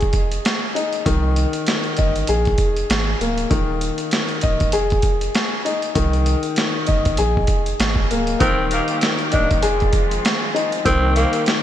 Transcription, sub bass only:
0.14 0.39 F1 medium
1.06 1.46 C2 loud
1.99 2.24 G1 medium
2.29 2.54 A#1 loud
2.59 2.84 F1 loud
2.90 3.15 G#1 loud
3.20 3.45 D1 medium
3.51 3.91 D#1 loud
4.44 4.68 D1 medium
4.73 4.98 F1 loud
5.03 5.29 F1 medium
5.96 6.35 C2 loud
6.89 7.13 G1 medium
7.18 7.43 A#1 loud
7.48 7.74 F1 medium
7.79 8.04 G#1 loud
8.10 8.35 D1 medium
8.41 8.80 D#1 loud
9.34 9.58 D1 medium
9.64 9.88 F1 loud
9.93 10.18 F1 medium
10.86 11.25 C2 loud

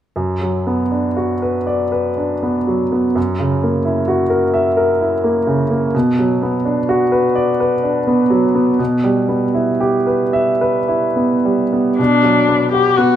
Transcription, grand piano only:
0.16 3.12 F#2 soft
0.41 0.82 F#3 soft
0.67 1.07 B3 soft
0.92 1.32 D4 soft
1.17 1.57 F#4 soft
1.42 1.83 B4 soft
1.67 2.08 D5 soft
1.92 2.33 B4 soft
2.17 2.58 D4 soft
2.43 2.82 B3 soft
2.67 3.06 F#3 soft
2.92 3.16 B3 soft
3.15 5.89 F#2 soft
3.39 3.76 C#3 soft
3.63 3.99 A#3 soft
3.85 4.21 E4 soft
4.08 4.44 F#4 soft
4.30 4.67 A#4 soft
4.54 4.91 E5 soft
4.77 5.14 A#4 soft
5.01 5.38 E4 soft
5.24 5.61 A#3 soft
5.47 5.84 C#3 soft
5.70 5.94 A#3 soft
5.94 8.75 B2 soft
6.19 6.56 F#3 soft
6.42 6.79 B3 soft
6.65 7.02 D4 soft
6.89 7.26 F#4 soft
7.12 7.49 B4 soft
7.35 7.73 D5 soft
7.60 7.97 B4 soft
7.84 8.21 D4 soft
8.07 8.45 B3 soft
8.30 8.69 F#3 soft
8.55 8.79 B3 soft
8.79 11.95 B2 soft
9.04 9.44 G3 soft
9.29 9.70 B3 soft
9.54 9.96 E4 soft
9.80 10.22 G4 soft
10.07 10.49 B4 soft
10.33 10.77 E5 soft
10.61 11.05 B4 soft
10.88 11.34 E4 soft
11.16 11.62 B3 soft
11.45 11.89 G3 soft
11.73 11.99 B3 soft
11.99 13.16 B2 soft
12.23 12.63 F#3 soft
12.48 12.88 B3 soft
12.73 13.12 F#4 soft
12.98 13.16 B3 soft

